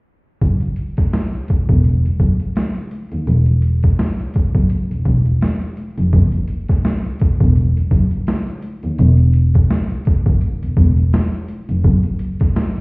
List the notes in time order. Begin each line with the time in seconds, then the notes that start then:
0.41 F#1, kick, closed hi-hat
0.60 closed hi-hat
0.76 closed hi-hat
0.97 kick, snare, closed hi-hat
1.13 snare, closed hi-hat
1.33 closed hi-hat
1.48 kick, closed hi-hat
1.69 E1, kick, closed hi-hat
1.84 closed hi-hat
2.04 F#1, closed hi-hat
2.20 F#1, kick, closed hi-hat
2.40 closed hi-hat
2.56 snare, closed hi-hat
2.76 closed hi-hat
2.91 closed hi-hat
3.12 D#2, closed hi-hat
3.27 E1, closed hi-hat
3.46 closed hi-hat
3.62 closed hi-hat
3.83 kick, closed hi-hat
3.99 snare, closed hi-hat
4.18 closed hi-hat
4.34 kick, closed hi-hat
4.55 F#1, kick, closed hi-hat
4.70 closed hi-hat
4.90 E1, closed hi-hat
5.05 E1, kick, closed hi-hat
5.25 closed hi-hat
5.41 snare, closed hi-hat
5.61 closed hi-hat
5.77 closed hi-hat
5.97 F1, closed hi-hat
6.13 F#1, kick, closed hi-hat
6.32 closed hi-hat
6.48 closed hi-hat
6.68 kick, snare, closed hi-hat
6.85 snare, closed hi-hat
7.04 closed hi-hat
7.19 kick, closed hi-hat
7.40 E1, kick, closed hi-hat
7.55 closed hi-hat
7.76 F#1, closed hi-hat
7.91 F#1, kick, closed hi-hat
8.11 closed hi-hat
8.27 snare, closed hi-hat
8.47 closed hi-hat
8.62 closed hi-hat
8.83 D#2, closed hi-hat
8.98 E1, closed hi-hat
9.17 closed hi-hat
9.33 closed hi-hat
9.54 kick, closed hi-hat
9.70 snare, closed hi-hat
9.90 closed hi-hat
10.05 kick, closed hi-hat
10.26 F#1, kick, closed hi-hat
10.41 closed hi-hat
10.62 E1, closed hi-hat
10.77 E1, kick, closed hi-hat
10.97 closed hi-hat
11.13 snare, closed hi-hat
11.33 closed hi-hat
11.48 closed hi-hat
11.69 F1, closed hi-hat
11.84 F#1, kick, closed hi-hat
12.03 closed hi-hat
12.19 closed hi-hat
12.40 kick, snare, closed hi-hat
12.56 snare, closed hi-hat
12.76 closed hi-hat